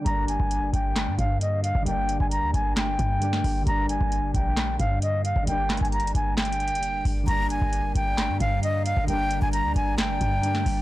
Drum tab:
HH |x-----x-----x-----x-----x-----x-----x-----x-----|x-----x-----x-----x-----x-----x-----x-----o-----|x-----x-----x-----x-----x-----x-----x-----x-----|x-----x-x-x-x-x-x-x-----x-x-x-x-x-x-x-----o-----|
CP |------------------------x-----------------------|------------------------x-----------------------|------------------------x-----------------------|------x-----------------x-----------------------|
SD |------------------------o-----------------------|------------------------o--------------o--------|------------------------o-----------------------|------o-----------------o-----------------------|
BD |o--------o--------o-----------o--------------o--|---------o--------o-----------o-----------o-----|o--------o--------o-----------o--------------o--|---------o--------o-----------------------o-----|

HH |x-----x-----x-----x-----x-----x-----x-----x-----|x-----x-----x-----x-----x-----x-----x-----o-----|
CP |------------------------x-----------------------|------------------------x-----------------------|
SD |------------------------o-----------------------|------------------------o--------------o--------|
BD |o--------o--------o-----------o--------------o--|---------o--------o-----------o-----------o-----|